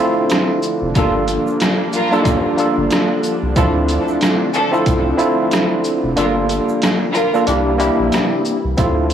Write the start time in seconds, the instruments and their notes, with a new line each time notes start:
Already playing: analog synth pad D3 F3 A3 C4 D4, tine electric piano C4 E4 F4
0.00 tine electric piano A4
0.30 cross-stick, snare, closed hi-hat, shaker
0.63 shaker
0.82 analog synth bass F1
0.95 analog synth bass G1, string section G3 F4 A#4, analog synth pad G3 A#3, tine electric piano A#3 D4 F4 A4, kick, closed hi-hat, shaker
1.28 closed hi-hat, shaker
1.47 shaker
1.60 cross-stick, snare, closed hi-hat, shaker
1.93 string section G3 F4 A#4, shaker
2.11 tine electric piano A#3 D4 F4 A4, shaker
2.25 kick, closed hi-hat, shaker
2.57 tine electric piano A#3 D4 F4 A4, shaker
2.78 analog synth bass G1
2.91 cross-stick, snare, closed hi-hat, shaker
3.23 shaker
3.43 analog synth bass C2
3.56 analog synth bass D2, string section F3 D4 A4, analog synth pad A3 C4, tine electric piano C4 E4 F4 A4, kick, closed hi-hat, shaker
3.89 closed hi-hat, shaker
4.08 shaker
4.21 cross-stick, snare, closed hi-hat, shaker
4.54 string section F3 D4 A4, shaker
4.72 tine electric piano C4 E4 F4 A4, shaker
4.86 analog synth bass C2, kick, closed hi-hat, shaker
5.17 tine electric piano C4 E4 F4 A4, shaker
5.51 cross-stick, snare, closed hi-hat, shaker
5.84 shaker
6.04 analog synth bass F1
6.16 analog synth bass G1, analog synth pad G3 A#3, string section G3 F4 A#4, tine electric piano A#3 D4 F4 A4, closed hi-hat, shaker
6.49 closed hi-hat, shaker
6.69 shaker
6.82 cross-stick, snare, closed hi-hat, shaker
7.13 string section G3 F4 A#4, shaker
7.33 tine electric piano A#3 D4 F4 A4, shaker
7.47 analog synth bass C2, analog synth pad C3 E3 E4, tine electric piano A#3 D4 E4 G4, closed hi-hat, shaker
7.78 tine electric piano A#3 D4 E4 G4, closed hi-hat, shaker
7.99 analog synth bass A#1
8.12 cross-stick, snare, closed hi-hat, shaker
8.45 shaker
8.65 analog synth bass C2
8.77 analog synth bass D2, analog synth pad D3 F3 A3 C4 D4, tine electric piano C4 E4 F4 A4, kick, closed hi-hat, shaker
9.10 closed hi-hat, shaker